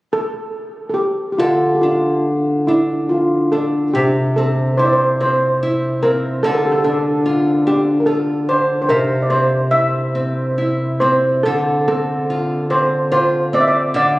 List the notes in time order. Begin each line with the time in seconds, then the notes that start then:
0.13 A4
0.90 A4
0.94 G4
1.32 G4
1.38 D3 F4 A4
1.75 G4
1.81 D4 F4
2.67 D4 E4
3.09 F4
3.52 D4 A4
3.94 C3 G4
4.36 C4 A4
4.77 E4 C5
4.85 D5
4.93 C5
5.20 C4 C5
5.63 E4
6.03 C4 A#4
6.43 D3 A4
6.53 A#4
6.57 A4
6.67 G4
6.72 A4
6.84 D4 A4
7.26 F4
7.67 D4 G4
8.00 A#4
8.06 F4 A4
8.49 D4 C5
8.82 C5
8.89 C3 A#4 C5
9.22 D5
9.30 C4 C5
9.71 E4 E5
10.15 C4
10.58 E4
11.00 C4 C5
11.43 D3 A4
11.88 C4 A4
12.30 F4
12.70 C4 C5
13.12 F4 C5
13.53 C4 D5
13.61 E5
13.68 D5
13.94 D3 D5